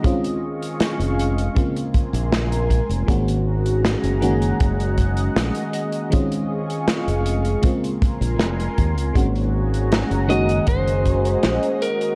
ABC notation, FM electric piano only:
X:1
M:4/4
L:1/8
Q:1/4=79
K:Gblyd
V:1 name="FM electric piano"
[E,A,CDF]4 [D,A,B,CF]4 | [E,A,B,DG]3 [E,A,B,DG]4- [E,A,B,DG] | [E,A,CDF]4 [D,A,B,CF]4 | [E,A,B,DG]3 [E,A,B,DG]4- [E,A,B,DG] |]